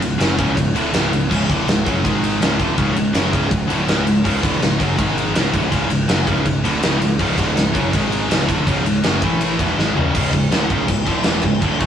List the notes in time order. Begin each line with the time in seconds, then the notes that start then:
0.00 C#1 C#2 G#2, ride
0.18 F#1 F#2 C#3 F#3, snare, ride
0.37 C#1 C#2 G#2 C#3, kick, ride
0.54 C#1 C#2 G#2, kick, ride
0.75 D1 D2 A2 D3, ride
0.92 C#1 C#2 G#2 C#3, snare, ride
1.12 C#1 C#2 G#2, ride
1.29 C#1 C#2 G#2 C#3, kick, crash
1.49 D1 D2 A2 D3, kick, ride
1.66 C#1 C#2 G#2, snare, ride
1.85 F#1 F#2 C#3 F#3, kick, ride
2.03 G#1 G#2 D#3 G#3, kick, ride
2.24 ride
2.41 C#1 C#2 G#2 C#3, snare, ride
2.57 D1 D2 A2 D3, kick, ride
2.77 C#1 C#2 G#2 C#3, kick, ride
2.94 C#1 C#2 G#2, ride
3.13 F#1 F#2 C#3 F#3, snare, ride
3.31 C#1 C#2 G#2 C#3, kick, ride
3.50 C#1 C#2 G#2, kick, ride
3.67 D1 D2 A2 D3, ride
3.86 C#1 C#2 G#2 C#3, snare, ride
3.90 C#2 C#3
4.06 C#1 C#2 G#2, ride
4.24 C#1 C#2 G#2 C#3, kick, crash
4.42 D1 D2 A2 D3, kick, ride
4.60 C#1 C#2 G#2, snare, ride
4.79 F#1 F#2 C#3 F#3, kick, ride
4.97 G#1 G#2 D#3 G#3, kick, ride
5.18 ride
5.34 C#1 C#2 G#2 C#3, snare, ride
5.51 D1 D2 A2 D3, kick, ride
5.70 C#1 C#2 G#2 C#3, kick, ride
5.90 C#1 C#2 G#2, ride
6.08 F#1 F#2 C#3 F#3, snare, ride
6.27 C#1 C#2 G#2 C#3, kick, ride
6.45 C#1 C#2 G#2, kick, ride
6.64 D1 D2 A2 D3, ride
6.82 C#1 C#2 G#2 C#3, snare, ride
7.00 C#1 C#2 G#2, ride
7.19 C#1 C#2 G#2 C#3, kick, crash
7.36 D1 D2 A2 D3, kick, ride
7.56 C#1 C#2 G#2, snare, ride
7.73 F#1 F#2 C#3 F#3, kick, ride
7.93 G#1 G#2 D#3 G#3, kick, ride
8.12 ride
8.29 C#1 C#2 G#2 C#3, snare, ride
8.48 D1 D2 A2 D3, kick, ride
8.67 C#1 C#2 G#2 C#3, kick, ride
8.85 C#1 C#2 G#2, ride
9.03 F#1 F#2 C#3 F#3, snare, ride
9.22 A1 A2 E3 A3, kick, ride
9.41 ride
9.58 E1 E2 B2 E3, kick, ride
9.77 G#1 G#2 D#3 G#3, snare
9.96 C#1 C#2 G#2 C#3, floor tom
10.15 C#1 C#2 G#2 C#3, kick, crash
10.33 C#1 C#2 G#2, kick, crash
10.51 D1 D2 A2 D3, snare, crash
10.70 C#1 C#2 G#2 C#3, kick, crash
10.88 C#1 C#2 G#2, kick, crash
11.05 D1 D2 A2 D3, kick, crash
11.23 E1 E2 B2 E3, snare, crash
11.42 C#1 C#2 G#2, kick, crash
11.62 D1 D2 A2 D3, kick, crash
11.80 A1 A2 E3 A3, kick, crash